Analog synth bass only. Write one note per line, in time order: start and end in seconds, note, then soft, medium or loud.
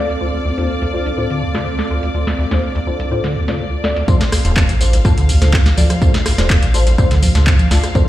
0.00 4.06 D2 medium
4.08 4.18 D2 loud
4.45 4.64 D1 medium
4.69 5.01 A1 loud
5.05 5.38 D2 medium
5.42 5.74 D2 loud
5.77 5.88 D2 medium
6.02 6.12 D2 loud
6.38 6.58 D1 medium
6.63 6.95 A1 loud
6.98 7.32 D2 medium
7.35 7.68 D2 loud
7.71 7.81 D2 medium
7.95 8.05 D2 loud